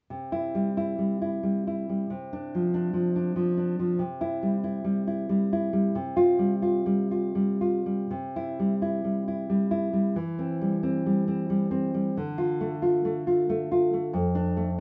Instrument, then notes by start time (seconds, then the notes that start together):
nylon-string guitar
0.10 C3
0.32 E4
0.55 G3
0.77 E4
0.99 G3
1.22 E4
1.43 G3
1.67 E4
1.89 G3
2.10 C3
2.33 D4
2.55 F3
2.74 D4
2.93 F3
3.16 D4
3.36 F3
3.57 D4
3.79 F3
3.99 C3
4.21 E4
4.43 G3
4.64 E4
4.84 G3
5.07 E4
5.29 G3
5.53 E4
5.73 G3
5.95 C3
6.17 F4
6.39 G3
6.62 F4
6.86 G3
7.11 F4
7.35 G3
7.61 F4
7.86 G3
8.11 C3
8.36 E4
8.59 G3
8.82 E4
9.04 G3
9.28 E4
9.50 G3
9.71 E4
9.93 G3
10.16 E3
10.39 C4
10.62 G3
10.83 C4
11.06 G3
11.28 C4
11.50 G3
11.71 C4
11.94 G3
12.17 D3
12.38 F4
12.61 A3
12.82 F4
13.05 A3
13.27 F4
13.49 A3
13.72 F4
13.94 A3
14.13 F2
14.35 D4
14.57 A3